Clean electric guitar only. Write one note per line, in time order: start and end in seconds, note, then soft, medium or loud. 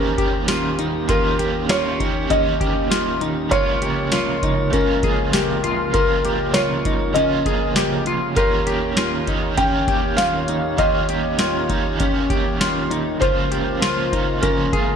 0.00 0.18 C#4 medium
0.18 0.48 G4 medium
0.49 0.79 F4 medium
0.79 1.09 D#4 medium
1.09 1.39 F4 medium
1.39 1.69 G4 medium
1.69 2.00 F4 medium
2.00 2.29 D#4 medium
2.30 2.60 C#4 medium
2.61 2.90 G4 medium
2.91 3.21 F4 medium
3.21 3.52 D#4 medium
3.52 3.81 F4 medium
3.82 4.12 G4 medium
4.12 4.43 F4 medium
4.43 4.73 D#4 medium
4.73 5.03 C#4 medium
5.04 5.34 G#4 medium
5.34 5.63 G4 medium
5.64 5.93 F4 medium
5.94 6.24 F4 medium
6.25 6.55 G4 medium
6.55 6.85 F4 medium
6.86 7.16 D#4 medium
7.16 7.46 C#4 medium
7.46 7.76 G#4 medium
7.76 8.06 G4 medium
8.07 8.36 F4 medium
8.37 8.66 F4 medium
8.67 8.97 G4 medium
8.98 9.28 F4 medium
9.28 9.57 D#4 medium
9.58 9.88 C#4 medium
9.88 10.18 G4 medium
10.18 10.49 F4 medium
10.49 10.79 D#4 medium
10.79 11.09 F4 medium
11.10 11.39 G4 medium
11.39 11.70 F4 medium
11.70 11.99 D#4 medium
12.00 12.30 C#4 medium
12.30 12.60 G4 medium
12.61 12.91 F4 medium
12.90 13.21 D#4 medium
13.21 13.51 F4 medium
13.52 13.81 G4 medium
13.82 14.12 F4 medium
14.13 14.42 D#4 medium
14.43 14.73 C#4 medium
14.73 14.96 G#4 medium